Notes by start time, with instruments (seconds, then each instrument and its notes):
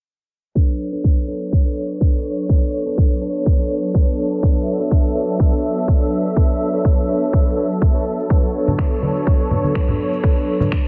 0.55 analog synth pad F#3 B3 D4 A4 C#5, tine electric piano D4 A4 B4 C#5, kick, shaker
0.70 shaker
0.92 tine electric piano D4 A4 B4 C#5, shaker
1.04 kick, shaker
1.18 shaker
1.28 tine electric piano D4 A4 B4 C#5
1.42 shaker
1.53 kick, shaker
1.65 tine electric piano D4 A4 B4 C#5, shaker
1.91 shaker
2.00 tine electric piano D4 A4 B4 C#5, kick, shaker
2.15 shaker
2.39 shaker
2.49 tine electric piano D4 A4 B4 C#5, kick, shaker
2.86 tine electric piano D4 A4 B4 C#5, shaker
2.98 kick, shaker
3.12 shaker
3.21 tine electric piano D4 A4 B4 C#5
3.36 shaker
3.46 kick, shaker
3.59 tine electric piano D4 A4 B4 C#5, shaker
3.84 shaker
3.94 tine electric piano D4 A4 B4 C#5, kick, shaker
4.09 shaker
4.32 shaker
4.43 tine electric piano D4 A4 B4 C#5, analog synth pad E5, kick, shaker
4.57 shaker
4.80 tine electric piano D4 A4 B4 C#5, shaker
4.91 kick, shaker
5.05 shaker
5.15 tine electric piano D4 A4 B4 C#5
5.29 shaker
5.40 kick, shaker
5.52 tine electric piano D4 A4 B4 C#5, shaker
5.78 shaker
5.88 tine electric piano D4 A4 B4 C#5, kick, shaker
6.02 shaker
6.26 shaker
6.36 tine electric piano D4 A4 B4 C#5, kick, shaker
6.73 tine electric piano D4 A4 B4 C#5, shaker
6.85 kick, shaker
6.99 shaker
7.09 tine electric piano D4 A4 B4 C#5
7.23 shaker
7.33 kick, shaker
7.46 tine electric piano D4 A4 B4 C#5, shaker
7.57 tine electric piano D4 A4 B4 C#5
7.71 shaker
7.82 kick, shaker
7.94 tine electric piano D4 A4 B4 C#5, shaker
8.20 shaker
8.30 tine electric piano D4 A4 B4 C#5, analog synth pad C#5, kick, shaker
8.44 shaker
8.67 tine electric piano D4 A4 B4 C#5, high conga, low conga, shaker
8.79 finger snap, kick, shaker
8.93 shaker
9.02 tine electric piano D4 A4 B4 C#5, high conga
9.17 shaker
9.27 kick, shaker
9.40 tine electric piano D4 A4 B4 C#5, shaker
9.51 high conga, low conga
9.64 high conga, shaker
9.75 tine electric piano D4 A4 B4, finger snap, kick, shaker
9.88 low conga, shaker
10.13 shaker
10.23 tine electric piano D4 A4 B4 C#5, kick, shaker
10.37 shaker
10.60 tine electric piano D4 A4 B4 C#5, high conga, low conga, shaker
10.72 finger snap, kick, shaker